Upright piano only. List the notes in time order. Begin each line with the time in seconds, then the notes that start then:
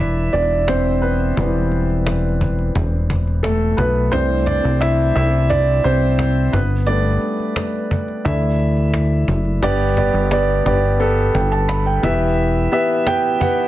Already playing: E3 G3 B3 D4 E4 B4 D5 E5
0.33 D4 D5
0.68 C4 C5
1.02 B3 B4
1.37 E3 G3 B3
3.43 A3 A4
3.77 B3 B4
4.12 E3 A3 C4 D4 C5
4.46 D4 D5
4.81 E4 E5
5.15 E4 E5
5.50 D4 D5
5.84 C4 C5
6.53 B3 B4
6.87 G3 A3 B3 D4 D5
8.25 E3 A3 D4 E4 E5
9.62 G2 B3 G4 D5
9.97 B3 G4 D5
10.31 B3 G4 D5
10.65 B3 G4 D5
11.00 B3 G4 A4
11.34 G5
11.52 A5
11.68 B5
11.86 G5
12.03 E3 B3 G4 E5
12.72 B3 G4 E5
13.06 B3 G4 G5
13.40 B3 G4 F#5